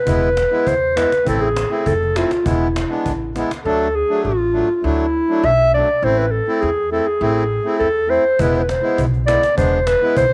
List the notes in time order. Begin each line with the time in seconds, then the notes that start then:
Already playing: B4
0.05 E1 G#3 B3 E4, cajon bass
0.22 cajon slap
0.37 cajon slap
0.51 G#3 B3 E4
0.67 E2 C5, cajon bass
0.95 G#3 B3 E4 B4, cajon slap
1.12 cajon slap
1.25 A1 A3 C4 E4 A4, cajon bass, cajon slap
1.41 G#4
1.57 cajon slap
1.70 A3 C4 E4
1.86 F1 A4, cajon bass
2.02 cajon slap
2.15 A3 C4 E4 F4, cajon slap
2.31 cajon slap
2.44 E1 G#3 B3 E4, cajon bass
2.76 cajon slap
2.89 G#3 B3 D4
3.05 A1, cajon bass, cajon slap
3.35 G#3 B3 E4, cajon slap
3.51 cajon slap
3.65 D2 F#3 A3 D4 A4
3.95 G#4
4.10 F#3 A3 D4
4.23 A1 F4
4.53 F#3 A3 D4
4.75 F4
4.83 D2 F#3 A3 D4 E4
5.28 F#3 A3 D4
5.43 B1 E5
5.74 F#3 A3 D4 D5
6.02 A1 A3 C4 E4 C5
6.18 B4
6.31 A4
6.47 A3 C4 E4
6.61 E2 G#4
6.92 A3 C4 E4 A4
7.07 G#4
7.21 A1 A3 C4 E4
7.65 A3 C4 E4
7.79 E2 A4
8.08 A3 C4 E4 C5
8.39 E1 G#3 B3 E4 B4, cajon bass
8.55 C5, cajon slap
8.62 B4
8.69 C5, cajon slap
8.82 G#3 B3 E4
8.98 B1, cajon bass
9.14 cajon slap
9.26 G#3 B3 E4 D5, cajon slap
9.43 cajon slap
9.56 E1 G#3 B3 D4 C5, cajon bass
9.87 B4, cajon slap
10.01 G#3 B3 E4
10.17 B1 C5, cajon bass